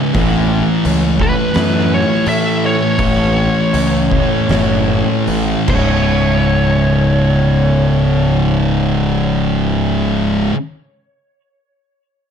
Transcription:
0.00 0.11 C#2 medium
0.00 0.13 C#2 medium
0.00 0.12 G#2 medium
0.00 0.13 G#2 medium
0.00 0.12 C#3 medium
0.00 0.13 C#3 medium
0.14 0.61 A1 medium
0.14 1.52 A2 medium
0.14 1.53 E3 medium
0.14 1.54 A3 loud
0.14 kick loud
0.14 open hi-hat medium
0.85 1.31 C#2 medium
0.85 open hi-hat medium
1.19 2.97 A2 medium
1.19 3.00 E3 medium
1.19 2.96 A3 medium
1.19 1.94 B4 medium
1.19 kick medium
1.52 2.02 F#2 medium
1.52 2.95 A2 medium
1.52 2.99 E3 medium
1.52 2.96 A3 medium
1.52 snare loud
1.52 open hi-hat medium
1.94 2.28 C#5 medium
2.26 2.74 A2 medium
2.26 2.64 E5 loud
2.26 open hi-hat medium
2.66 5.26 C#5 medium
2.96 3.48 A1 medium
2.96 4.46 A2 medium
2.96 4.47 E3 medium
2.96 kick loud
2.96 open hi-hat medium
3.01 4.48 A3 loud
3.74 4.24 C#2 medium
3.74 open hi-hat medium
4.11 5.67 A2 medium
4.11 5.69 E3 medium
4.11 5.69 A3 medium
4.11 kick medium
4.48 5.01 F#1 medium
4.48 5.67 A2 medium
4.48 5.69 E3 medium
4.48 5.69 A3 medium
4.48 snare loud
4.48 open hi-hat soft
5.27 5.54 A1 medium
5.27 open hi-hat soft
5.67 10.48 C#1 medium
5.67 10.51 C#2 medium
5.67 10.53 G#2 medium
5.67 10.16 C#5 medium
5.67 kick loud
5.67 crash medium
5.72 10.55 C#3 medium

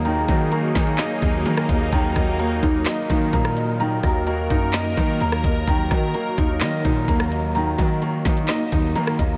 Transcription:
0.00 0.26 D#2 loud
0.00 0.05 D#3 loud
0.00 0.75 D#3 medium
0.00 0.29 F#3 medium
0.00 5.64 F#3 medium
0.00 0.52 A#3 medium
0.00 9.37 A#3 medium
0.00 0.28 D#4 medium
0.00 0.76 D#4 medium
0.00 9.37 D#4 medium
0.00 0.27 D#5 medium
0.00 0.28 D#5 loud
0.05 1.22 D#3 medium
0.05 1.91 G#4 medium
0.05 1.44 A#5 loud
0.05 closed hi-hat medium
0.28 0.73 D#3 loud
0.28 1.46 F#3 medium
0.28 1.68 D#5 medium
0.28 kick loud
0.28 open hi-hat medium
0.52 1.44 A#3 medium
0.52 1.92 F#4 loud
0.52 closed hi-hat medium
0.75 0.98 D#3 loud
0.75 1.93 D#4 medium
0.75 1.20 D#4 medium
0.75 kick loud
0.75 snare medium
0.75 closed hi-hat soft
0.87 closed hi-hat medium
0.98 1.92 A#3 medium
0.98 1.92 D#5 loud
0.98 snare loud
0.98 clap medium
0.98 closed hi-hat medium
1.22 1.45 D#2 loud
1.22 1.93 D#3 medium
1.22 1.92 D#4 medium
1.22 kick loud
1.22 closed hi-hat medium
1.46 1.68 D#3 loud
1.46 1.92 A#3 medium
1.46 1.91 A#5 medium
1.46 closed hi-hat medium
1.57 cross-stick loud
1.69 1.92 D#2 loud
1.69 1.92 D#5 medium
1.69 kick loud
1.69 closed hi-hat medium
1.92 2.15 D#2 loud
1.92 3.10 D#3 loud
1.92 9.37 A#4 medium
1.92 3.32 A#5 loud
1.92 kick loud
1.92 closed hi-hat medium
2.16 2.61 D#2 loud
2.16 3.33 F#3 medium
2.16 3.55 D#5 medium
2.16 kick loud
2.16 cross-stick medium
2.16 closed hi-hat medium
2.39 3.32 A#3 medium
2.39 3.80 F#4 medium
2.39 closed hi-hat medium
2.63 2.85 D#2 loud
2.63 3.08 D#4 medium
2.63 4.03 D#4 medium
2.63 kick loud
2.63 closed hi-hat medium
2.85 4.27 A#3 medium
2.85 4.04 D#5 medium
2.85 snare loud
2.85 clap medium
2.85 closed hi-hat medium
2.94 closed hi-hat medium
3.02 closed hi-hat medium
3.10 4.50 D#3 medium
3.10 3.32 D#3 loud
3.10 4.27 D#4 medium
3.10 kick loud
3.10 closed hi-hat medium
3.33 4.01 A#2 loud
3.33 4.25 A#3 medium
3.33 3.79 A#5 loud
3.33 kick loud
3.33 closed hi-hat medium
3.45 cross-stick loud
3.56 4.02 D#5 medium
3.56 closed hi-hat medium
3.80 4.97 D#3 loud
3.80 5.19 A#5 loud
3.80 closed hi-hat medium
4.03 4.48 D#2 loud
4.03 5.21 F#3 medium
4.03 5.43 D#5 medium
4.03 kick loud
4.03 cross-stick medium
4.03 open hi-hat medium
4.27 5.19 A#3 medium
4.27 5.68 F#4 loud
4.27 closed hi-hat medium
4.50 4.95 F#2 loud
4.50 5.67 D#4 medium
4.50 4.96 D#4 medium
4.50 kick loud
4.50 closed hi-hat medium
4.73 5.67 A#3 loud
4.73 5.67 D#5 loud
4.73 snare loud
4.73 clap medium
4.73 closed hi-hat medium
4.82 closed hi-hat medium
4.89 closed hi-hat medium
4.97 5.67 D#3 medium
4.97 5.20 D#3 loud
4.97 5.67 D#4 medium
4.97 kick loud
4.97 closed hi-hat medium
5.21 5.43 D#2 loud
5.21 5.68 A#3 medium
5.21 5.66 A#5 medium
5.21 closed hi-hat medium
5.32 cross-stick loud
5.44 5.67 D#2 loud
5.44 5.68 D#5 loud
5.44 kick loud
5.44 closed hi-hat medium
5.67 5.90 D#2 loud
5.67 6.85 D#3 loud
5.67 9.37 F#3 medium
5.67 7.07 A#5 loud
5.67 kick loud
5.67 closed hi-hat medium
5.91 6.13 D#3 loud
5.91 7.08 F#3 medium
5.91 7.30 D#5 medium
5.91 kick loud
5.91 cross-stick medium
5.91 closed hi-hat medium
6.14 7.07 A#3 medium
6.14 7.55 F#4 medium
6.14 closed hi-hat medium
6.38 6.63 D#2 loud
6.38 7.78 D#4 medium
6.38 6.83 D#4 medium
6.38 kick loud
6.38 closed hi-hat medium
6.60 6.84 D#3 loud
6.60 8.02 A#3 medium
6.60 7.79 D#5 loud
6.60 snare loud
6.60 clap medium
6.60 closed hi-hat medium
6.69 closed hi-hat medium
6.77 closed hi-hat medium
6.85 7.07 A#2 loud
6.85 8.25 D#3 medium
6.85 8.02 D#4 medium
6.85 kick loud
6.85 closed hi-hat medium
7.08 7.76 D#2 loud
7.08 8.01 A#3 medium
7.08 7.54 A#5 medium
7.08 kick loud
7.08 closed hi-hat medium
7.20 cross-stick loud
7.31 7.77 D#5 medium
7.31 closed hi-hat medium
7.55 8.72 D#3 loud
7.55 8.94 A#5 loud
7.55 closed hi-hat medium
7.78 8.23 D#3 loud
7.78 8.96 F#3 medium
7.78 9.18 D#5 medium
7.78 kick loud
7.78 open hi-hat medium
8.02 8.94 A#3 medium
8.02 9.37 F#4 loud
8.02 closed hi-hat medium
8.25 8.48 D#3 loud
8.25 9.37 D#4 medium
8.25 8.71 D#4 medium
8.25 kick loud
8.25 snare medium
8.25 closed hi-hat soft
8.37 closed hi-hat medium
8.48 9.37 A#3 medium
8.48 9.37 D#5 loud
8.48 snare loud
8.48 clap medium
8.48 closed hi-hat medium
8.72 8.95 D#2 loud
8.72 9.37 D#3 medium
8.72 9.37 D#4 medium
8.72 kick loud
8.72 closed hi-hat medium
8.96 9.18 D#3 loud
8.96 9.37 A#3 medium
8.96 9.37 A#5 medium
8.96 closed hi-hat medium
9.07 cross-stick loud
9.19 9.37 D#2 loud
9.19 9.37 D#5 medium
9.19 kick loud
9.19 closed hi-hat medium

